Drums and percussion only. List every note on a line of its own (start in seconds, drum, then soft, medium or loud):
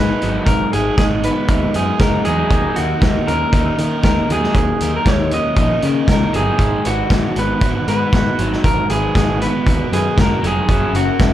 0.22 closed hi-hat soft
0.46 kick medium
0.46 closed hi-hat medium
0.73 closed hi-hat medium
0.98 kick loud
0.98 snare loud
0.98 closed hi-hat medium
1.23 closed hi-hat medium
1.48 kick loud
1.48 closed hi-hat medium
1.74 closed hi-hat soft
1.99 kick loud
1.99 snare medium
1.99 closed hi-hat medium
2.25 closed hi-hat soft
2.50 kick medium
2.50 closed hi-hat medium
2.76 closed hi-hat medium
3.02 kick loud
3.02 snare medium
3.02 closed hi-hat medium
3.28 closed hi-hat soft
3.53 kick medium
3.53 closed hi-hat medium
3.78 closed hi-hat soft
4.03 kick loud
4.03 snare loud
4.03 closed hi-hat medium
4.30 closed hi-hat soft
4.44 snare soft
4.55 kick medium
4.55 closed hi-hat medium
4.80 closed hi-hat medium
5.06 kick medium
5.06 snare loud
5.06 closed hi-hat medium
5.31 closed hi-hat medium
5.56 kick medium
5.56 closed hi-hat medium
5.82 closed hi-hat medium
6.08 kick loud
6.08 snare loud
6.08 closed hi-hat medium
6.34 closed hi-hat soft
6.58 kick medium
6.58 closed hi-hat medium
6.85 closed hi-hat medium
7.10 kick loud
7.10 snare loud
7.10 closed hi-hat medium
7.36 closed hi-hat medium
7.61 kick loud
7.61 closed hi-hat medium
7.88 closed hi-hat medium
8.13 kick loud
8.13 snare medium
8.13 closed hi-hat medium
8.39 closed hi-hat soft
8.53 snare soft
8.64 kick medium
8.64 closed hi-hat medium
8.90 closed hi-hat medium
9.15 kick loud
9.15 snare loud
9.15 closed hi-hat medium
9.41 closed hi-hat soft
9.67 kick medium
9.67 closed hi-hat medium
9.93 closed hi-hat medium
10.18 kick medium
10.18 snare loud
10.18 closed hi-hat medium
10.44 closed hi-hat medium
10.69 kick medium
10.69 closed hi-hat medium
10.95 closed hi-hat medium
11.19 kick medium
11.19 snare loud
11.19 closed hi-hat medium